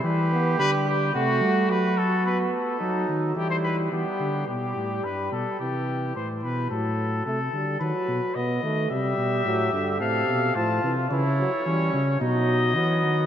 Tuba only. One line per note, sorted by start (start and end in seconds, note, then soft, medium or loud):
0.04 0.58 E3 medium
0.59 1.13 D3 medium
1.15 1.44 C3 medium
1.42 1.71 G3 medium
1.70 2.53 F#3 medium
2.81 3.07 F#3 medium
3.08 3.36 D#3 medium
3.36 3.91 E3 medium
3.92 4.04 E3 medium
4.20 4.47 D3 medium
4.48 4.74 B2 medium
4.76 5.03 A2 soft
5.04 5.31 G2 soft
5.32 5.45 B2 medium
5.60 6.15 C3 medium
6.16 6.45 A2 medium
6.44 6.70 B2 medium
6.71 7.25 A2 medium
7.26 7.52 C3 medium
7.53 7.80 D3 medium
7.81 7.93 D#3 medium
8.08 8.20 B2 medium
8.35 8.62 B2 medium
8.63 8.90 D#3 medium
8.90 9.17 C3 medium
9.18 9.45 B2 medium
9.45 9.72 A2 medium
9.73 10.02 G2 medium
10.00 10.27 A2 medium
10.28 10.55 B2 medium
10.55 10.82 A2 medium
10.83 11.10 C3 medium
11.11 11.46 C#3 medium
11.66 11.91 E3 medium
11.94 12.20 C#3 medium
12.21 12.77 B2 medium
12.76 13.05 E3 medium
13.03 13.26 D#3 medium